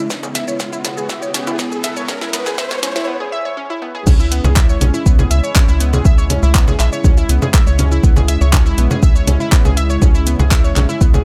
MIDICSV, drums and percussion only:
0, 0, Header, 1, 2, 480
1, 0, Start_track
1, 0, Key_signature, 4, "minor"
1, 0, Tempo, 495868
1, 99, Time_signature, 4, 2, 24, 8
1, 10880, End_track
2, 0, Start_track
2, 0, Title_t, "Drums"
2, 98, Note_on_c, 9, 36, 122
2, 100, Note_on_c, 9, 38, 71
2, 100, Note_on_c, 9, 82, 76
2, 195, Note_off_c, 9, 36, 0
2, 197, Note_off_c, 9, 38, 0
2, 197, Note_off_c, 9, 82, 0
2, 225, Note_on_c, 9, 64, 87
2, 225, Note_on_c, 9, 82, 43
2, 322, Note_off_c, 9, 64, 0
2, 322, Note_off_c, 9, 82, 0
2, 340, Note_on_c, 9, 38, 77
2, 340, Note_on_c, 9, 42, 106
2, 340, Note_on_c, 9, 82, 53
2, 437, Note_off_c, 9, 38, 0
2, 437, Note_off_c, 9, 42, 0
2, 437, Note_off_c, 9, 82, 0
2, 464, Note_on_c, 9, 82, 43
2, 561, Note_off_c, 9, 82, 0
2, 578, Note_on_c, 9, 36, 118
2, 579, Note_on_c, 9, 38, 76
2, 579, Note_on_c, 9, 82, 75
2, 675, Note_off_c, 9, 36, 0
2, 676, Note_off_c, 9, 38, 0
2, 676, Note_off_c, 9, 82, 0
2, 704, Note_on_c, 9, 82, 44
2, 801, Note_off_c, 9, 82, 0
2, 819, Note_on_c, 9, 38, 75
2, 819, Note_on_c, 9, 42, 91
2, 819, Note_on_c, 9, 64, 88
2, 819, Note_on_c, 9, 82, 54
2, 916, Note_off_c, 9, 38, 0
2, 916, Note_off_c, 9, 42, 0
2, 916, Note_off_c, 9, 64, 0
2, 916, Note_off_c, 9, 82, 0
2, 944, Note_on_c, 9, 82, 44
2, 1041, Note_off_c, 9, 82, 0
2, 1058, Note_on_c, 9, 36, 122
2, 1059, Note_on_c, 9, 38, 82
2, 1059, Note_on_c, 9, 82, 76
2, 1155, Note_off_c, 9, 36, 0
2, 1156, Note_off_c, 9, 38, 0
2, 1156, Note_off_c, 9, 82, 0
2, 1185, Note_on_c, 9, 82, 43
2, 1282, Note_off_c, 9, 82, 0
2, 1300, Note_on_c, 9, 38, 84
2, 1300, Note_on_c, 9, 42, 112
2, 1300, Note_on_c, 9, 82, 54
2, 1397, Note_off_c, 9, 38, 0
2, 1397, Note_off_c, 9, 42, 0
2, 1397, Note_off_c, 9, 82, 0
2, 1425, Note_on_c, 9, 64, 89
2, 1425, Note_on_c, 9, 82, 43
2, 1522, Note_off_c, 9, 64, 0
2, 1522, Note_off_c, 9, 82, 0
2, 1537, Note_on_c, 9, 36, 124
2, 1540, Note_on_c, 9, 38, 85
2, 1540, Note_on_c, 9, 82, 75
2, 1634, Note_off_c, 9, 36, 0
2, 1636, Note_off_c, 9, 38, 0
2, 1636, Note_off_c, 9, 82, 0
2, 1664, Note_on_c, 9, 82, 43
2, 1761, Note_off_c, 9, 82, 0
2, 1780, Note_on_c, 9, 38, 91
2, 1780, Note_on_c, 9, 42, 101
2, 1780, Note_on_c, 9, 82, 53
2, 1877, Note_off_c, 9, 38, 0
2, 1877, Note_off_c, 9, 42, 0
2, 1877, Note_off_c, 9, 82, 0
2, 1903, Note_on_c, 9, 82, 43
2, 2000, Note_off_c, 9, 82, 0
2, 2017, Note_on_c, 9, 36, 120
2, 2018, Note_on_c, 9, 38, 95
2, 2018, Note_on_c, 9, 64, 96
2, 2018, Note_on_c, 9, 82, 75
2, 2114, Note_off_c, 9, 36, 0
2, 2115, Note_off_c, 9, 38, 0
2, 2115, Note_off_c, 9, 64, 0
2, 2115, Note_off_c, 9, 82, 0
2, 2143, Note_on_c, 9, 38, 83
2, 2143, Note_on_c, 9, 82, 41
2, 2240, Note_off_c, 9, 38, 0
2, 2240, Note_off_c, 9, 82, 0
2, 2258, Note_on_c, 9, 38, 91
2, 2258, Note_on_c, 9, 42, 109
2, 2258, Note_on_c, 9, 82, 53
2, 2355, Note_off_c, 9, 38, 0
2, 2355, Note_off_c, 9, 42, 0
2, 2355, Note_off_c, 9, 82, 0
2, 2383, Note_on_c, 9, 38, 83
2, 2383, Note_on_c, 9, 82, 45
2, 2480, Note_off_c, 9, 38, 0
2, 2480, Note_off_c, 9, 82, 0
2, 2497, Note_on_c, 9, 36, 119
2, 2499, Note_on_c, 9, 38, 98
2, 2499, Note_on_c, 9, 82, 77
2, 2594, Note_off_c, 9, 36, 0
2, 2596, Note_off_c, 9, 38, 0
2, 2596, Note_off_c, 9, 82, 0
2, 2623, Note_on_c, 9, 38, 86
2, 2623, Note_on_c, 9, 64, 96
2, 2623, Note_on_c, 9, 82, 43
2, 2720, Note_off_c, 9, 38, 0
2, 2720, Note_off_c, 9, 64, 0
2, 2720, Note_off_c, 9, 82, 0
2, 2738, Note_on_c, 9, 38, 98
2, 2738, Note_on_c, 9, 42, 96
2, 2738, Note_on_c, 9, 82, 50
2, 2835, Note_off_c, 9, 38, 0
2, 2835, Note_off_c, 9, 42, 0
2, 2835, Note_off_c, 9, 82, 0
2, 2863, Note_on_c, 9, 38, 89
2, 2863, Note_on_c, 9, 82, 44
2, 2960, Note_off_c, 9, 38, 0
2, 2960, Note_off_c, 9, 82, 0
2, 3583, Note_on_c, 9, 48, 53
2, 3680, Note_off_c, 9, 48, 0
2, 3699, Note_on_c, 9, 47, 80
2, 3796, Note_off_c, 9, 47, 0
2, 3823, Note_on_c, 9, 45, 79
2, 3920, Note_off_c, 9, 45, 0
2, 3938, Note_on_c, 9, 36, 117
2, 3939, Note_on_c, 9, 49, 102
2, 3939, Note_on_c, 9, 64, 92
2, 3939, Note_on_c, 9, 82, 84
2, 4035, Note_off_c, 9, 36, 0
2, 4036, Note_off_c, 9, 49, 0
2, 4036, Note_off_c, 9, 64, 0
2, 4036, Note_off_c, 9, 82, 0
2, 4064, Note_on_c, 9, 82, 47
2, 4161, Note_off_c, 9, 82, 0
2, 4179, Note_on_c, 9, 42, 108
2, 4179, Note_on_c, 9, 82, 58
2, 4276, Note_off_c, 9, 42, 0
2, 4276, Note_off_c, 9, 82, 0
2, 4303, Note_on_c, 9, 64, 94
2, 4303, Note_on_c, 9, 82, 49
2, 4400, Note_off_c, 9, 64, 0
2, 4400, Note_off_c, 9, 82, 0
2, 4418, Note_on_c, 9, 36, 119
2, 4418, Note_on_c, 9, 39, 127
2, 4418, Note_on_c, 9, 82, 83
2, 4514, Note_off_c, 9, 39, 0
2, 4514, Note_off_c, 9, 82, 0
2, 4515, Note_off_c, 9, 36, 0
2, 4543, Note_on_c, 9, 82, 46
2, 4640, Note_off_c, 9, 82, 0
2, 4658, Note_on_c, 9, 42, 89
2, 4658, Note_on_c, 9, 64, 86
2, 4658, Note_on_c, 9, 82, 56
2, 4755, Note_off_c, 9, 42, 0
2, 4755, Note_off_c, 9, 64, 0
2, 4755, Note_off_c, 9, 82, 0
2, 4784, Note_on_c, 9, 82, 48
2, 4881, Note_off_c, 9, 82, 0
2, 4898, Note_on_c, 9, 36, 117
2, 4899, Note_on_c, 9, 82, 81
2, 4995, Note_off_c, 9, 36, 0
2, 4996, Note_off_c, 9, 82, 0
2, 5024, Note_on_c, 9, 64, 91
2, 5024, Note_on_c, 9, 82, 48
2, 5121, Note_off_c, 9, 64, 0
2, 5121, Note_off_c, 9, 82, 0
2, 5139, Note_on_c, 9, 42, 107
2, 5139, Note_on_c, 9, 82, 60
2, 5235, Note_off_c, 9, 42, 0
2, 5235, Note_off_c, 9, 82, 0
2, 5264, Note_on_c, 9, 82, 48
2, 5361, Note_off_c, 9, 82, 0
2, 5379, Note_on_c, 9, 36, 121
2, 5379, Note_on_c, 9, 39, 123
2, 5379, Note_on_c, 9, 64, 89
2, 5379, Note_on_c, 9, 82, 81
2, 5475, Note_off_c, 9, 36, 0
2, 5476, Note_off_c, 9, 39, 0
2, 5476, Note_off_c, 9, 64, 0
2, 5476, Note_off_c, 9, 82, 0
2, 5504, Note_on_c, 9, 82, 47
2, 5600, Note_off_c, 9, 82, 0
2, 5619, Note_on_c, 9, 42, 94
2, 5619, Note_on_c, 9, 82, 60
2, 5716, Note_off_c, 9, 42, 0
2, 5716, Note_off_c, 9, 82, 0
2, 5744, Note_on_c, 9, 64, 89
2, 5744, Note_on_c, 9, 82, 47
2, 5841, Note_off_c, 9, 64, 0
2, 5841, Note_off_c, 9, 82, 0
2, 5859, Note_on_c, 9, 36, 123
2, 5859, Note_on_c, 9, 82, 81
2, 5955, Note_off_c, 9, 36, 0
2, 5956, Note_off_c, 9, 82, 0
2, 5984, Note_on_c, 9, 82, 43
2, 6081, Note_off_c, 9, 82, 0
2, 6099, Note_on_c, 9, 42, 109
2, 6099, Note_on_c, 9, 64, 88
2, 6099, Note_on_c, 9, 82, 57
2, 6196, Note_off_c, 9, 42, 0
2, 6196, Note_off_c, 9, 64, 0
2, 6196, Note_off_c, 9, 82, 0
2, 6225, Note_on_c, 9, 82, 46
2, 6322, Note_off_c, 9, 82, 0
2, 6338, Note_on_c, 9, 36, 121
2, 6340, Note_on_c, 9, 39, 127
2, 6340, Note_on_c, 9, 82, 82
2, 6435, Note_off_c, 9, 36, 0
2, 6436, Note_off_c, 9, 39, 0
2, 6436, Note_off_c, 9, 82, 0
2, 6464, Note_on_c, 9, 64, 92
2, 6464, Note_on_c, 9, 82, 46
2, 6561, Note_off_c, 9, 64, 0
2, 6561, Note_off_c, 9, 82, 0
2, 6580, Note_on_c, 9, 39, 62
2, 6580, Note_on_c, 9, 42, 94
2, 6580, Note_on_c, 9, 82, 55
2, 6677, Note_off_c, 9, 39, 0
2, 6677, Note_off_c, 9, 42, 0
2, 6677, Note_off_c, 9, 82, 0
2, 6705, Note_on_c, 9, 82, 48
2, 6802, Note_off_c, 9, 82, 0
2, 6818, Note_on_c, 9, 36, 124
2, 6820, Note_on_c, 9, 64, 90
2, 6820, Note_on_c, 9, 82, 80
2, 6915, Note_off_c, 9, 36, 0
2, 6917, Note_off_c, 9, 64, 0
2, 6917, Note_off_c, 9, 82, 0
2, 6945, Note_on_c, 9, 82, 46
2, 7042, Note_off_c, 9, 82, 0
2, 7060, Note_on_c, 9, 42, 112
2, 7060, Note_on_c, 9, 82, 59
2, 7157, Note_off_c, 9, 42, 0
2, 7157, Note_off_c, 9, 82, 0
2, 7185, Note_on_c, 9, 64, 88
2, 7185, Note_on_c, 9, 82, 45
2, 7282, Note_off_c, 9, 64, 0
2, 7282, Note_off_c, 9, 82, 0
2, 7298, Note_on_c, 9, 36, 126
2, 7300, Note_on_c, 9, 39, 121
2, 7300, Note_on_c, 9, 82, 81
2, 7395, Note_off_c, 9, 36, 0
2, 7397, Note_off_c, 9, 39, 0
2, 7397, Note_off_c, 9, 82, 0
2, 7424, Note_on_c, 9, 82, 47
2, 7520, Note_off_c, 9, 82, 0
2, 7540, Note_on_c, 9, 42, 98
2, 7540, Note_on_c, 9, 64, 87
2, 7540, Note_on_c, 9, 82, 58
2, 7636, Note_off_c, 9, 42, 0
2, 7636, Note_off_c, 9, 64, 0
2, 7636, Note_off_c, 9, 82, 0
2, 7665, Note_on_c, 9, 82, 47
2, 7761, Note_off_c, 9, 82, 0
2, 7778, Note_on_c, 9, 36, 122
2, 7779, Note_on_c, 9, 82, 81
2, 7875, Note_off_c, 9, 36, 0
2, 7876, Note_off_c, 9, 82, 0
2, 7904, Note_on_c, 9, 64, 91
2, 7904, Note_on_c, 9, 82, 43
2, 8001, Note_off_c, 9, 64, 0
2, 8001, Note_off_c, 9, 82, 0
2, 8019, Note_on_c, 9, 42, 111
2, 8019, Note_on_c, 9, 82, 53
2, 8116, Note_off_c, 9, 42, 0
2, 8116, Note_off_c, 9, 82, 0
2, 8144, Note_on_c, 9, 82, 46
2, 8241, Note_off_c, 9, 82, 0
2, 8258, Note_on_c, 9, 36, 122
2, 8259, Note_on_c, 9, 39, 125
2, 8259, Note_on_c, 9, 64, 91
2, 8259, Note_on_c, 9, 82, 77
2, 8355, Note_off_c, 9, 36, 0
2, 8356, Note_off_c, 9, 39, 0
2, 8356, Note_off_c, 9, 64, 0
2, 8356, Note_off_c, 9, 82, 0
2, 8385, Note_on_c, 9, 82, 43
2, 8481, Note_off_c, 9, 82, 0
2, 8499, Note_on_c, 9, 42, 93
2, 8499, Note_on_c, 9, 82, 52
2, 8596, Note_off_c, 9, 42, 0
2, 8596, Note_off_c, 9, 82, 0
2, 8623, Note_on_c, 9, 64, 95
2, 8623, Note_on_c, 9, 82, 46
2, 8720, Note_off_c, 9, 64, 0
2, 8720, Note_off_c, 9, 82, 0
2, 8738, Note_on_c, 9, 36, 124
2, 8739, Note_on_c, 9, 82, 77
2, 8834, Note_off_c, 9, 36, 0
2, 8836, Note_off_c, 9, 82, 0
2, 8863, Note_on_c, 9, 82, 46
2, 8960, Note_off_c, 9, 82, 0
2, 8978, Note_on_c, 9, 42, 115
2, 8978, Note_on_c, 9, 64, 97
2, 8978, Note_on_c, 9, 82, 58
2, 9075, Note_off_c, 9, 42, 0
2, 9075, Note_off_c, 9, 64, 0
2, 9075, Note_off_c, 9, 82, 0
2, 9103, Note_on_c, 9, 82, 42
2, 9200, Note_off_c, 9, 82, 0
2, 9218, Note_on_c, 9, 36, 125
2, 9218, Note_on_c, 9, 39, 118
2, 9218, Note_on_c, 9, 82, 78
2, 9314, Note_off_c, 9, 36, 0
2, 9315, Note_off_c, 9, 39, 0
2, 9315, Note_off_c, 9, 82, 0
2, 9343, Note_on_c, 9, 64, 94
2, 9343, Note_on_c, 9, 82, 44
2, 9440, Note_off_c, 9, 64, 0
2, 9440, Note_off_c, 9, 82, 0
2, 9459, Note_on_c, 9, 42, 99
2, 9459, Note_on_c, 9, 82, 57
2, 9556, Note_off_c, 9, 42, 0
2, 9556, Note_off_c, 9, 82, 0
2, 9583, Note_on_c, 9, 82, 43
2, 9680, Note_off_c, 9, 82, 0
2, 9698, Note_on_c, 9, 36, 122
2, 9698, Note_on_c, 9, 64, 93
2, 9698, Note_on_c, 9, 82, 74
2, 9795, Note_off_c, 9, 36, 0
2, 9795, Note_off_c, 9, 64, 0
2, 9795, Note_off_c, 9, 82, 0
2, 9823, Note_on_c, 9, 82, 43
2, 9920, Note_off_c, 9, 82, 0
2, 9938, Note_on_c, 9, 42, 112
2, 9938, Note_on_c, 9, 82, 53
2, 10035, Note_off_c, 9, 42, 0
2, 10035, Note_off_c, 9, 82, 0
2, 10063, Note_on_c, 9, 64, 98
2, 10063, Note_on_c, 9, 82, 43
2, 10160, Note_off_c, 9, 64, 0
2, 10160, Note_off_c, 9, 82, 0
2, 10178, Note_on_c, 9, 36, 117
2, 10178, Note_on_c, 9, 39, 121
2, 10178, Note_on_c, 9, 82, 74
2, 10275, Note_off_c, 9, 36, 0
2, 10275, Note_off_c, 9, 39, 0
2, 10275, Note_off_c, 9, 82, 0
2, 10303, Note_on_c, 9, 82, 43
2, 10400, Note_off_c, 9, 82, 0
2, 10419, Note_on_c, 9, 39, 59
2, 10419, Note_on_c, 9, 42, 93
2, 10419, Note_on_c, 9, 64, 90
2, 10419, Note_on_c, 9, 82, 54
2, 10516, Note_off_c, 9, 39, 0
2, 10516, Note_off_c, 9, 42, 0
2, 10516, Note_off_c, 9, 64, 0
2, 10516, Note_off_c, 9, 82, 0
2, 10544, Note_on_c, 9, 82, 45
2, 10641, Note_off_c, 9, 82, 0
2, 10658, Note_on_c, 9, 36, 123
2, 10660, Note_on_c, 9, 82, 78
2, 10755, Note_off_c, 9, 36, 0
2, 10757, Note_off_c, 9, 82, 0
2, 10785, Note_on_c, 9, 64, 98
2, 10785, Note_on_c, 9, 82, 44
2, 10880, Note_off_c, 9, 64, 0
2, 10880, Note_off_c, 9, 82, 0
2, 10880, End_track
0, 0, End_of_file